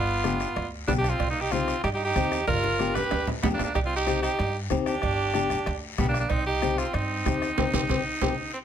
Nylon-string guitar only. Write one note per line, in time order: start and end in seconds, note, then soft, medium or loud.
0.24 0.47 B3 medium
0.24 0.47 D4 medium
0.24 0.47 G4 loud
0.87 1.10 B3 medium
0.87 1.10 D4 medium
0.87 1.10 G4 medium
1.52 1.74 C4 medium
1.52 1.75 D#4 medium
1.52 1.75 G4 medium
2.16 2.38 C4 medium
2.16 2.38 D#4 medium
2.16 2.39 G4 medium
2.79 3.02 B3 medium
2.79 3.02 D4 medium
2.79 3.02 G4 medium
3.43 3.66 B3 medium
3.43 3.66 D4 medium
3.43 3.66 G4 medium
4.06 4.29 C4 medium
4.06 4.29 D#4 medium
4.06 4.29 G4 medium
4.70 4.93 C4 medium
4.70 4.93 D#4 medium
4.70 4.93 G4 loud
5.34 5.57 B3 medium
5.34 5.57 D4 medium
5.34 5.57 G4 loud
5.98 6.21 B3 medium
5.98 6.21 D4 medium
5.98 6.21 G4 medium
6.62 6.84 C4 medium
6.62 6.85 D#4 medium
6.62 6.85 G4 medium
7.25 7.48 C4 medium
7.25 7.48 D#4 medium
7.25 7.49 G4 medium
7.57 7.68 C4 loud
7.57 7.68 D#4 loud
7.57 7.68 G4 medium
7.73 7.84 C4 medium
7.73 7.83 D#4 loud
7.73 7.83 G4 medium
7.89 8.00 C4 loud
7.89 8.00 D#4 loud
7.89 8.00 G4 medium
8.22 8.32 C4 loud
8.22 8.32 D#4 loud
8.22 8.32 G4 loud